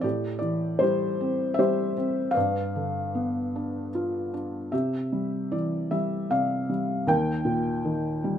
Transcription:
felt piano
0.01 A2 G4 D5
0.39 E3 D5
0.79 G3 G4 C5
0.83 E4
1.21 C4
1.54 E5
1.59 G3 G4 C5
1.98 C4
2.31 B4 D5 F5
2.37 G2
2.76 D3
3.15 B3
3.56 D4
3.95 F4
4.34 D4
4.72 C3 G4 E5
5.12 G3
5.52 E3 D5
5.91 G3 E5
6.30 C3 D5 F5
6.69 G3
7.07 D#2 A#4 G5
7.45 A#2
7.85 D#3
8.24 G3

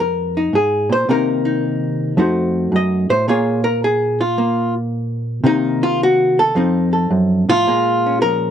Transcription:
hollow-body jazz guitar
Already playing: F2 G#3 C4
0.00 A#4
0.37 D#4
0.53 G#2 G#4
0.90 A#2 C5
1.09 C3 D#3 A#3 D#4 A#4
1.45 D#4
2.17 F2 A3 D#4 F#4 C5
2.72 F#2 D#5
3.10 A2 C5
3.28 A#2 A#3 F4 G#4 C#5
3.64 A#4
3.84 G#4
4.21 F4
4.38 A#3
5.44 C3 D#3 A#3 D#4
5.83 F4
6.03 F#4
6.39 A4
6.55 F2 F3 C4 D#4
6.93 A4
7.11 F#2
7.49 A2 F4
7.67 A#2 G#3
8.06 C#4
8.22 F3 A#4

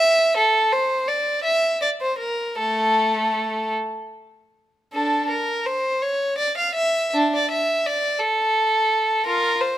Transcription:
violin
Already playing: E5
0.37 A4
0.73 C5
1.08 D5
1.44 E5
1.82 D5
2.01 C5
2.19 A#4
2.59 A3 A4
4.94 D4 A4
5.30 A#4
5.66 C5
6.02 C#5
6.38 D5
6.58 F5
6.75 E5
7.14 D4
7.34 D5
7.51 E5
7.86 D5
8.20 A4
9.26 F4 A#4
9.61 C5

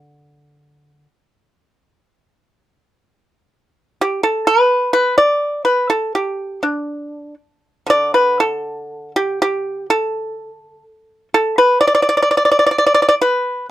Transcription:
pipa
Already playing: D3
4.01 G4
4.23 A4
4.47 B4
4.93 B4
5.18 D5
5.65 B4
5.90 A4
6.15 G4
6.63 D4
7.86 D3 D5
8.14 B4
8.40 A4
9.16 G4
9.42 G4
9.90 A4
11.34 A4
11.58 B4
11.81 D5
11.87 D5
11.95 D5
12.02 D5
12.09 D5
12.17 D5
12.22 D5
12.31 D5
12.37 D5
12.45 D5
12.52 D5
12.59 D5
12.66 D5
12.71 D5
12.78 D5
12.86 D5
12.94 D5
13.02 D5
13.09 D5
13.21 B4

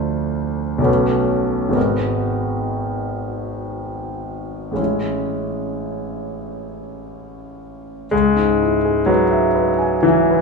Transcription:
grand piano
Already playing: D2 A3 D4 F4 C5
0.78 B1 A3 C#4
0.84 F#4 B4
1.69 G#1 G#3 B3
1.73 F#4 A#4
4.71 A1 G#3 C#4
4.76 E4 C#5
8.11 C#2 G#3
8.36 G#2
8.62 E4
8.85 G#4
9.06 F#3 B4
9.31 E5
9.55 B4
9.79 G#5
10.03 E3 E5
10.30 B4

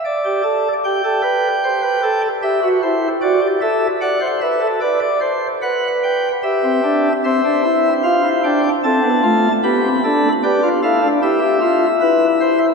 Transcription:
pipe organ
0.05 D5
0.25 G4
0.43 A4
0.84 G4 G5
1.04 A4
1.22 B4
1.64 C5
1.82 B4
2.03 A4
2.42 G4 E5
2.63 F#4
2.83 E4 C5
3.22 F#4 D5
3.42 G4
3.61 A4 E5
4.01 D5 F#5
4.21 C5
4.41 B4 E5
4.61 A4
4.81 B4 D5
5.01 D5
5.21 C5
5.62 B4 F#5
6.03 G5
6.43 G4 E5
6.63 C4
6.83 D4
7.24 C4 C5 E5
7.44 D4
7.64 E4
8.03 F4 F5
8.24 E4
8.44 D4 G5
8.84 C4 A4 A5
9.03 B3
9.23 A3 F4
9.63 B3 G4 B5
9.84 C4
10.04 D4 A4
10.43 G4 B4 D5
10.63 F4
10.82 E4 A4 F5
11.03 D4
11.22 E4 G4 E5
11.42 G4
11.61 F4
12.01 E4 B4
12.40 C5

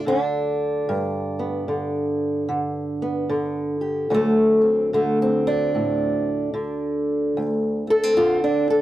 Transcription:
steel-string acoustic guitar
Already playing: D2 F#3
0.06 D3 D4
0.89 G2
1.39 B3
1.68 D3
2.49 D3
3.02 B3
3.29 D3
3.81 G4
4.10 D2 D3 F#3
4.14 A3
4.61 C4
4.93 D3 A3
5.22 C4
5.47 D4
5.75 A2
6.54 D3
7.37 D2
7.87 A3 A4
8.03 C4
8.17 D3 F4
8.44 D4
8.70 A4

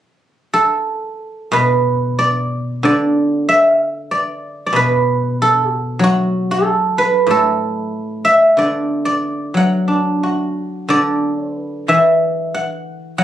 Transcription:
guzheng
0.54 A4
1.52 B2 B4
2.19 D5
2.83 D3 D5
3.49 E5
4.11 D5
4.66 D5
4.73 B2 B4
5.42 A4
5.71 F#4
5.99 F#3
6.04 F#4
6.51 A4
6.98 B4
7.27 A2
7.31 A4
8.25 E5
8.57 D3 D5
9.05 D5
9.54 F#3 F#5
9.88 D4
10.23 F#4
10.89 D3 D5
11.54 B4
11.88 E3 E5
12.54 F#5
13.18 F#3 F#5

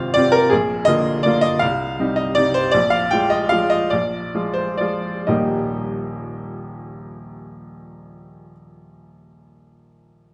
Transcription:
upright piano
Already playing: G#1 C3 C4 F4 F5
0.14 C3 C4 F4 D5
0.32 A#4
0.50 A#1 G#4
0.85 D3 A#3 F4 D#5
1.23 D3 A#3 F4 D5
1.41 D#5
1.59 C2 F5
2.00 C3 G3 D#4
2.16 D#5
2.35 C3 G3 D#4 D5
2.54 C5
2.71 A#1 D5
2.90 F5
3.11 F3 G#3 F4 G5
3.30 D#5
3.49 F3 G#3 F4 F5
3.70 D#5
3.90 A#1 D5
4.35 F3 G#3 F4
4.54 C5
4.78 F3 G#3 F4 D5
5.27 D#1 A#1 G3 A#3 D#4 G4 D#5

